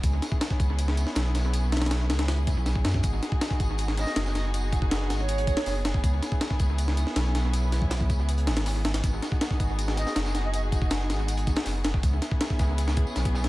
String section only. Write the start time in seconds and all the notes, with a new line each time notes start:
0.03 B3 C#4 E4 G#4
3.03 B3 D#4 F#4
6.03 C#4 E4
9.03 D#4 F#4 G#4
12.03 B3 C#4 E4 G#4